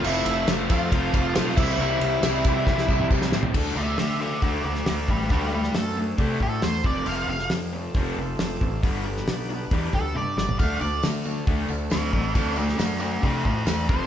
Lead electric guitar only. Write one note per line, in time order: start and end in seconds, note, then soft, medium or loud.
0.06 0.46 E4 medium
0.70 1.22 F4 loud
1.23 1.56 F4 loud
1.56 3.06 E4 loud
3.76 3.97 C5 medium
3.76 3.98 E5 medium
3.98 4.19 C5 medium
3.98 4.20 E5 medium
4.21 4.41 C5 medium
4.21 4.42 E5 medium
4.42 4.63 F#4 medium
4.42 4.64 D5 medium
4.65 4.85 F#4 medium
4.65 4.87 D5 medium
4.88 5.08 F#4 medium
4.88 5.09 D5 medium
5.09 5.29 D4 medium
5.09 5.30 B4 medium
5.31 5.51 D4 medium
5.31 5.53 B4 medium
5.54 5.74 D4 medium
5.54 5.75 B4 medium
5.76 5.96 A4 medium
6.43 6.63 A4 medium
6.63 6.84 C5 medium
6.86 7.07 D5 medium
7.07 7.28 F5 medium
7.30 7.51 F5 loud
9.94 10.15 A4 medium
10.16 10.37 D5 medium
10.38 10.59 D5 medium
10.59 10.81 F5 medium
10.81 11.03 D5 loud
11.92 12.12 A4 medium
11.92 12.12 F5 loud
12.13 12.33 A4 medium
12.13 12.35 F5 medium
12.35 12.56 A4 medium
12.35 12.57 F5 medium
12.58 12.77 F#4 medium
12.58 12.79 D5 loud
12.79 12.99 F#4 medium
12.79 13.01 D5 medium
13.01 13.22 F#4 medium
13.01 13.23 D5 medium
13.24 13.44 A4 medium
13.24 13.45 C5 medium
13.46 13.66 A4 medium
13.46 13.67 C5 medium
13.68 13.88 A4 medium
13.68 13.88 C5 medium
13.90 14.07 C5 medium